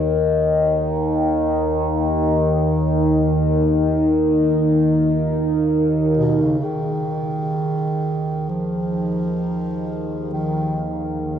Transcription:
Already playing: D#2 D#3 D#4 A#4
2.54 F5
6.17 B2
6.42 C#3
6.62 D#2 D#3 G#4
8.49 F3
10.33 D#3
11.21 D#3

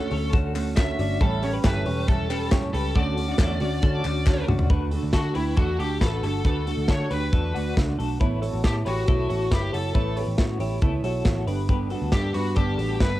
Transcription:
Already playing: D3 A3 F#4 A4
0.10 D2 A3 C#4 F#4 A4 C#5, open hi-hat
0.31 D3 A3 C#4 F#4 A4, kick, closed hi-hat
0.54 A3 C#4 F#4 A4, clap, open hi-hat
0.76 D3 A3 C#4 F#4 E5, kick, snare, clap, closed hi-hat
0.98 G1 A3 C#4 D4 F#4, open hi-hat
1.20 A1 A2 E3 G3 C#4 E4 G4 A4, kick, closed hi-hat
1.42 G3 C#4 G4 C#5, open hi-hat
1.53 G4 B4
1.64 G1 A2 E3 G3 C#4 E4 G4 A4 B4, kick, snare, clap, closed hi-hat
1.86 E1 G3 C#4 G4 A4 C#5, open hi-hat
2.08 E3 G3 C#4 E4 G4 A4, kick, closed hi-hat
2.29 G3 C#4 G4 B4, clap, open hi-hat
2.51 A2 E3 G3 C#4 G4 A4 C#5, kick, snare, clap, closed hi-hat
2.72 C#2 G3 C#4 G4 A4 B4, open hi-hat
2.95 D2 D3 A3 C#4 F#4 A4 D5, kick, closed hi-hat
3.16 A3 C#4 F#4, open hi-hat
3.28 D4 F#4
3.38 E2 D3 A3 C#4 F#4 A4, kick, snare, clap, closed hi-hat
3.60 D2 A3 C#4 D4 F#4, open hi-hat
3.82 D3 A3 C#4 F#4 A4, kick, closed hi-hat
4.04 D2 A3 C#4 D4 F#4, clap, open hi-hat
4.26 D3 A3 C#4 F#4, kick, snare, clap
4.48 C#2 A3 C#4 D4 F#4, mid tom
4.59 floor tom
4.70 D2 D3 A3 D4 F#4 B4, kick, closed hi-hat
4.91 A3 D4 F#4 A4, open hi-hat
5.03 D2
5.13 D3 A3 D4 F#4 A4, kick, snare, closed hi-hat
5.35 D2 A3 D4 E4 F#4 G4 B4, open hi-hat
5.57 E2 D3 A3 D4 F#4 A4, kick, closed hi-hat
5.79 D2 A3 D4 F#4 G4 A4, open hi-hat
6.00 A1 D3 A3 D4 F#4 A4 B4, kick, snare, closed hi-hat
6.22 G1 A3 D4 F#4 A4, open hi-hat
6.44 D2 D3 A3 D4 F#4 A4 B4, kick, closed hi-hat
6.66 A3 D4 F#4 A4, open hi-hat
6.77 D2
6.88 D3 A3 D4 F#4 A4 C#5, kick, snare, closed hi-hat
7.10 D2 A3 D4 F#4 G4 B4, open hi-hat
7.33 E2 D3 A3 D4 F#4 A4, kick, closed hi-hat
7.54 D2 A3 D4 F#4, open hi-hat
7.76 C#2 D3 A3 D4 F#4, kick, snare, closed hi-hat
7.98 B1 A3 D4 F#4 A4, open hi-hat
8.20 A1 A3 B3 E4 A4 B4 C#5, kick, closed hi-hat
8.41 E4 F#4 A4 C#5, open hi-hat
8.53 A1
8.63 A2 B3 E4 G4 A4 C#5, kick, snare, closed hi-hat
8.85 A1 E4 F#4 G4 A4 B4 C#5, open hi-hat
9.07 B1 A3 B3 E4 A4 C#5, kick, closed hi-hat
9.29 A1 E4 F#4 A4 C#5, open hi-hat
9.50 G1 B3 E4 G4 A4 B4 C#5, kick, snare, closed hi-hat
9.72 F#1 E4 F#4 A4 C#5, open hi-hat
9.94 A1 A3 B3 E4 A4 B4 C#5, kick, closed hi-hat
10.16 E4 G4 A4 B4 C#5, open hi-hat
10.27 A1
10.37 A2 B3 C#4 E4 F#4 A4 C#5, kick, snare, closed hi-hat
10.59 A1 E4 G4 A4 C#5, open hi-hat
10.82 C#2 A3 B3 E4 A4 C#5, kick, closed hi-hat
11.03 B1 E4 F#4 A4 C#5, open hi-hat
11.25 A1 B3 E4 A4 C#5, kick, snare, closed hi-hat
11.47 G1 G3 B3 D4 G4 B4, open hi-hat
11.69 G2 D3 G3 B3 D4 G4 B4, kick, closed hi-hat
11.90 G3 B3 D4 F#4 A4, open hi-hat
12.02 D2
12.12 G2 D3 G3 B3 D4 G4 A4, kick, snare, closed hi-hat
12.34 G2 G3 B3 D4 F#4 G4 B4, open hi-hat
12.56 G1 G2 D3 G3 B3 D4 G4 A4, kick, closed hi-hat
12.78 A1 G3 B3 D4 F#4 A4, open hi-hat
13.00 G1 D3 G3 B3 D4 G4 B4, kick, snare, closed hi-hat

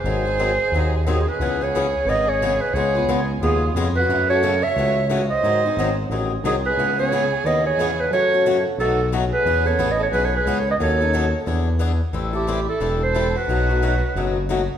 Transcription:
Already playing: G#4 C5
0.04 G#1 D#3 F#3 C4 D#4 G#4
0.25 C4 D#4 G#4
0.39 D#3 F#3 C4 D#4 G#4
0.72 D#2 D#3 F#3 C4 D#4 G#4
1.07 D#3 F#3 C4 D#4 G#4
1.27 G#4 B4
1.40 C#2 C#3 E3 B3 C#4 G#4
1.60 B3 C#4 G#4 C#5
1.75 C#3 E3 B3 C#4 G#4
2.05 G#1 C#3 E3 B3 B4
2.09 C#4 G#4 D#5
2.26 G#4 C#5
2.42 C#3 E3 B3 C#4 G#4
2.60 G#4 B4
2.73 C#2 C#3 G#3 B3 F4 G#4 C#5
2.95 B3 F4 G#4
3.08 C#2 C#3 G#3 B3 F4 G#4
3.41 D#2 C#3 G#3 B3 F4 G#4
3.75 F2 C#3 G#3 B3 F4 G#4
3.95 F#4 B4
4.09 F#2 C#3 E3 A3 C#4 F#4
4.29 A3 C#4 F#4 A4 C#5
4.43 C#3 E3 A3 C#4 F#4
4.62 C#5 E5
4.76 C#2 C#3 E3 A3 C#4 F#4
5.10 C#3 E3 A3 C#4 F#4
5.29 C5 D#5
5.43 G#2 D#3 F#3 C4 D#4 G#4
5.65 C4 D#4 G#4
5.77 G#1 D#3 F#3 C4 D#4 G#4
6.10 A1 D#3 F#3 C4 D#4 G#4
6.43 C2 D#3 F#3 C4 D#4 G#4
6.65 G#4 B4
6.77 C#2 C#3 E3 B3 C#4 G#4
6.98 B3 C#4 G#4 C#5
7.12 C#3 E3 B3 C#4 G#4
7.44 D#2 C#3 E3 B3 C#4 G#4 B4 D#5
7.64 G#4 C#5
7.77 E2 C#3 E3 B3 C#4 G#4
7.97 G#4 B4
8.10 F#2 C#3 E3 A3 C#4 A4 C#5
8.14 F#4
8.33 A3 C#4 F#4
8.46 C#3 E3 A3 C#4 F#4
8.77 B1 B2 F#3 A3 D#4 F#4 A4
9.12 B2 F#3 A3 D#4 F#4
9.30 G#4 B4
9.45 E2 E3 B3 C#4 G#4
9.64 B3 C#4 G#4 A4 C#5
9.78 A1 E3 B3 C#4 G#4
9.89 B4 D#5
9.99 A4 C#5
10.11 B1 E3 B3 C#4 G#4 B4
10.23 A4 C#5
10.35 G#4 B4
10.46 C#2 E3 B3 C#4 G#4
10.57 A4 C#5
10.68 B4 D#5
10.80 D#2 D#3 F#3 C#4 D#4 A4 C#5
11.00 C#4 D#4 A4
11.13 D#3 F#3 C#4 D#4 A4
11.46 E2 E3 B3 D4 G#4
11.79 E3 B3 D4 G#4
12.13 A1 E3 G3 C4 E4 A4
12.33 C4 E4 G4 A4
12.47 E3 G3 C4 E4 A4
12.67 E4 A4
12.80 E1 E3 G3 C4 E4 A4
13.01 A4 C5
13.15 E3 G3 C4 E4 A4
13.35 F#4 B4
13.48 B1 B2 F#3 A3 D#4 F#4
13.69 A3 D#4 F#4
13.82 B2 F#3 A3 D#4 F#4
14.15 F#1 B2 F#3 A3 D#4 F#4
14.49 B2 F#3 A3 D#4 F#4

